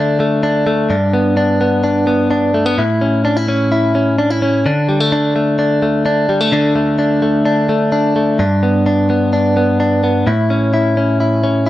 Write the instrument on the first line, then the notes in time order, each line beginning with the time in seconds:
clean electric guitar
Already playing: D3 A3 D4
0.20 A3
0.43 D4
0.67 A3
0.90 G2 D4
1.13 B3
1.37 D4
1.61 B3
1.84 D4
2.07 B3
2.31 D4
2.54 A3
2.66 B3
2.78 A2 E4
3.01 C#4
3.25 D4
3.37 E4
3.48 C#4
3.72 E4
3.95 C#4
4.18 D4
4.30 E4
4.42 C#4
4.66 D3 D4
4.89 G3
5.00 A3
5.12 D4
5.36 A3
5.59 D4
5.82 A3
6.06 D4
6.29 G3
6.41 A3
6.52 D3 D4
6.75 A3
6.99 D4
7.22 A3
7.45 D4
7.69 A3
7.92 D4
8.16 A3
8.39 G2 D4
8.63 B3
8.86 D4
9.10 B3
9.33 D4
9.57 B3
9.80 D4
10.04 B3
10.27 A2 E4
10.50 C#4
10.74 E4
10.97 C#4
11.20 E4
11.43 C#4
11.66 E4